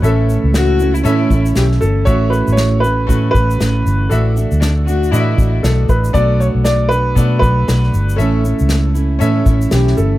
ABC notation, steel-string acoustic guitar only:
X:1
M:4/4
L:1/8
Q:"Swing 16ths" 1/4=118
K:Amix
V:1 name="Steel-string acoustic guitar"
[A,,E,A,CE]3 [A,CE] [A,,E,A,CE] [A,CE] [E,A,CE]2 | [A,,E,A,CF]3 [A,CF] [A,,E,A,CF] [A,CF] [E,A,CF]2 | [A,,E,A,DF] [A,DF]2 [A,DF] [A,,E,A,DF] [A,DF] [E,A,DF]2 | [B,,F,A,DF]3 [A,DF] [B,,F,A,DF] [A,DF] [F,A,DF]2 |
[A,,E,A,CE] [A,CE]2 [A,CE] [A,,E,A,CE] [A,CE] [E,A,CE]2 |]